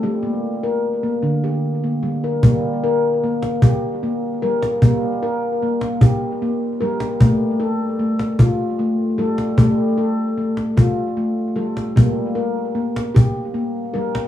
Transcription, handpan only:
X:1
M:6/8
L:1/16
Q:3/8=50
K:Gm
V:1 name="Handpan"
z B,2 B2 B,2 G2 B,2 B | B,2 B2 B,2 G2 B,2 B2 | B,2 B2 B,2 G2 B,2 B2 | A,2 A2 A,2 F2 A,2 A2 |
A,2 A2 A,2 F2 A,2 A2 | B,2 B2 B,2 G2 B,2 B2 |]
V:2 name="Handpan" clef=bass
G,6 D,2 z2 G,2 | G,6 G,4 G,2 | G,6 G,4 G,2 | G,6 G,4 G,2 |
G,6 G,4 G,2 | G,6 G,4 G,2 |]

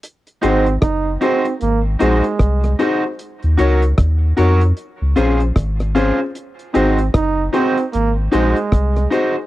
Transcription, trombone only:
X:1
M:4/4
L:1/16
Q:"Swing 16ths" 1/4=76
K:Abmix
V:1 name="Trombone"
z2 C2 E2 C2 B, z A,4 z2 | z16 | z2 C2 E2 C2 B, z A,4 z2 |]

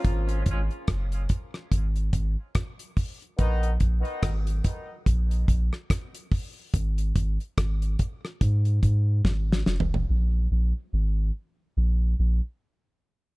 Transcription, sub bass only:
X:1
M:4/4
L:1/16
Q:"Swing 16ths" 1/4=72
K:Abdor
V:1 name="Sub bass" clef=bass
A,,,2 A,,, z G,,,2 z2 A,,,2 A,,, z4 z | B,,,2 B,,, z A,,,2 z2 B,,,2 B,,, z4 z | A,,,2 A,,, z A,,,2 z2 A,,2 A,,2 A,,,2 F,,,2 | B,,,2 B,,, z A,,,2 z2 B,,,2 B,,, z4 z |]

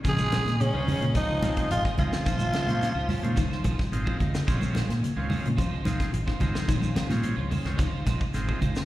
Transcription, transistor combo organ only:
X:1
M:4/4
L:1/16
Q:1/4=108
K:Bbm
V:1 name="Transistor combo organ"
[A,CDF]2 z3 [A,DFc]2 z3 [A,CEF]2 z2 [A,CEF]2 | z3 [A,CDF]2 z2 [A,CDF] z4 [A,CEF]2 z2 | [A,CDF]2 z3 [A,CDF]2 z3 [A,CEF]2 z2 [A,CEF]2 | z3 [A,CDF]2 z2 [A,CDF] z4 [A,CEF]2 z2 |]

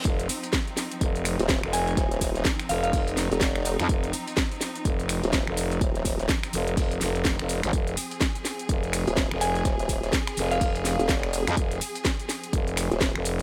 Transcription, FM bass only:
X:1
M:4/4
L:1/16
Q:"Swing 16ths" 1/4=125
K:Fm
V:1 name="FM bass" clef=bass
F,,,2 z6 F,,,3 z2 F,,,3 | z6 F,,,2 F,,,3 z4 F,, | F,,,2 z6 F,,,3 z2 F,,,3 | z6 F,,,2 F,,,2 F,,,3 F,,,2 A,,, |
F,,,2 z6 F,,,3 z2 F,,,3 | z6 F,,,2 F,,,3 z4 F,, | F,,,2 z6 F,,,3 z2 F,,,3 |]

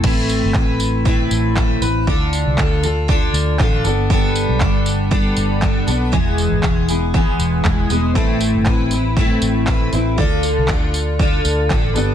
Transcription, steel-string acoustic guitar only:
X:1
M:4/4
L:1/8
Q:"Swing 16ths" 1/4=118
K:Am
V:1 name="Steel-string acoustic guitar"
[A,,A,CEB]2 [A,CEB]2 [A,,A,CEB]2 [A,CEB] [CEB] | [D,DFA]2 [D,DFA] [DFA] [D,DFA]2 [D,DFA] [B,DA] | [G,B,DA]2 [G,B,DA]2 [G,B,DA]2 [G,B,DA] [B,DA] | [E,,E,^G,B,E^G]2 [G,EG] [G,B,EG] [E,,E,G,B,EG]2 [G,B,EG] [G,B,EG] |
[A,,A,CEB]2 [A,CEB] [CEB] [A,,A,CEB]2 [A,CEB] [CEB] | [D,DFA]2 [D,DFA]2 [D,DFA]2 [D,DFA] [B,DA] |]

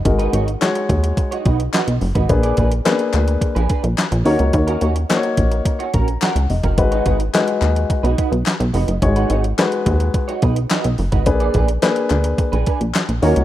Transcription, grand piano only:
X:1
M:4/4
L:1/8
Q:1/4=107
K:A#phr
V:1 name="Grand piano"
[G,DFA] z [G,DFc]3 z3 | [A,=DGB] z [A,B,DGB]3 z2 [A,^DFc]- | [A,DFc] z [A,DF^Bc]3 a f d | [G,DFB] z [G,DFB]3 z3 |
[G,DFc] z [G,DFB]3 z3 | [A,=DGB] z [A,DGB]3 z2 [A,^DEFc] |]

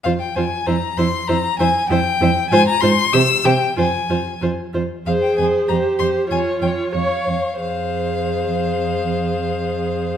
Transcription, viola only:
X:1
M:2/4
L:1/8
Q:1/4=94
K:Fm
V:1 name="Viola"
F F =E E | =E E E E | F F G G | F F F F |
A2 G2 | F2 d z | A4- | A4 |]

